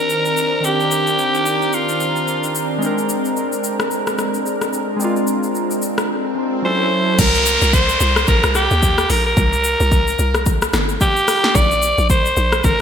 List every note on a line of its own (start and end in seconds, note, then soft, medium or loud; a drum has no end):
0.00 0.58 D#3 medium
0.00 2.78 D#3 medium
0.00 0.59 C4 medium
0.00 6.60 C4 medium
0.00 0.61 D4 medium
0.00 6.60 D4 medium
0.00 0.62 A#4 medium
0.00 0.67 A#4 loud
0.00 6.60 A#4 medium
0.10 shaker medium
0.25 shaker medium
0.37 shaker medium
0.60 2.76 D#3 medium
0.60 2.78 C4 medium
0.60 shaker medium
0.65 2.79 D4 medium
0.65 1.76 G4 loud
0.65 2.80 G4 medium
0.80 shaker soft
0.91 shaker medium
1.07 shaker medium
1.19 shaker medium
1.35 shaker medium
1.46 shaker medium
1.62 shaker soft
1.73 2.56 F4 medium
1.73 shaker medium
1.89 shaker medium
2.00 shaker medium
2.16 shaker medium
2.28 shaker medium
2.44 shaker medium
2.55 shaker medium
2.78 4.95 G#3 medium
2.78 4.96 C4 medium
2.78 shaker medium
2.82 6.60 G#3 medium
2.82 4.97 D4 medium
2.82 4.98 A#4 medium
2.98 shaker soft
3.09 shaker loud
3.25 shaker medium
3.37 shaker medium
3.52 shaker medium
3.64 shaker medium
3.80 cross-stick loud
3.80 shaker soft
3.91 shaker medium
4.07 cross-stick medium
4.07 shaker medium
4.18 cross-stick medium
4.18 shaker medium
4.34 shaker soft
4.46 shaker medium
4.62 cross-stick medium
4.62 shaker medium
4.73 shaker medium
4.96 6.32 G#3 medium
4.96 6.33 C4 medium
4.96 swell medium
4.96 shaker medium
5.02 6.35 D4 medium
5.02 6.36 F4 medium
5.16 shaker soft
5.27 shaker medium
5.43 shaker medium
5.55 shaker medium
5.71 shaker medium
5.82 shaker medium
5.98 cross-stick loud
5.98 shaker soft
6.35 6.63 G#3 medium
6.35 6.64 C4 medium
6.35 6.64 D4 medium
6.35 6.65 F4 medium
6.62 7.18 F#3 medium
6.62 7.18 C#4 medium
6.62 7.18 E4 medium
6.62 7.19 E4 medium
6.62 7.18 A4 medium
6.62 7.20 A4 medium
6.62 7.21 C5 loud
7.19 7.58 C2 loud
7.19 7.76 A#4 loud
7.19 kick loud
7.19 crash loud
7.19 downlifter medium
7.19 shaker medium
7.35 shaker medium
7.46 shaker loud
7.62 7.97 C2 medium
7.62 shaker medium
7.73 8.28 C5 loud
7.73 kick loud
7.73 shaker medium
7.89 shaker medium
8.00 8.25 C2 loud
8.00 shaker loud
8.16 cross-stick loud
8.16 shaker soft
8.27 8.42 A#1 medium
8.27 8.54 A#4 loud
8.27 kick loud
8.27 shaker medium
8.43 8.68 C2 loud
8.43 cross-stick loud
8.43 shaker medium
8.55 9.12 G4 loud
8.55 cross-stick medium
8.55 shaker medium
8.71 9.06 D#2 medium
8.71 shaker medium
8.82 kick loud
8.82 shaker medium
8.98 cross-stick loud
8.98 shaker medium
9.10 9.34 A#1 medium
9.10 9.26 A#4 loud
9.10 open hi-hat medium
9.10 shaker medium
9.26 10.59 A#4 loud
9.37 9.76 C2 loud
9.37 kick loud
9.37 shaker medium
9.53 shaker medium
9.64 shaker loud
9.80 10.15 C2 loud
9.80 shaker medium
9.92 kick loud
9.92 shaker medium
10.08 shaker medium
10.19 10.69 C2 loud
10.19 shaker loud
10.35 cross-stick loud
10.35 shaker soft
10.46 kick loud
10.46 shaker medium
10.62 cross-stick loud
10.62 shaker medium
10.73 10.98 G1 medium
10.73 cross-stick loud
10.73 snare medium
10.73 shaker medium
10.89 shaker medium
11.01 11.57 G4 loud
11.01 kick loud
11.01 shaker medium
11.16 shaker medium
11.28 cross-stick loud
11.28 open hi-hat medium
11.28 shaker medium
11.44 snare medium
11.55 11.94 A#1 loud
11.55 12.10 D5 loud
11.55 kick loud
11.55 shaker medium
11.71 shaker medium
11.82 shaker loud
11.98 12.33 A#1 loud
11.98 shaker medium
12.10 12.66 C5 loud
12.10 kick loud
12.10 shaker medium
12.26 shaker medium
12.37 12.62 A#1 loud
12.37 shaker loud
12.52 cross-stick loud
12.52 shaker soft
12.64 12.79 G#1 medium
12.64 12.81 A#4 loud
12.64 kick loud
12.64 shaker medium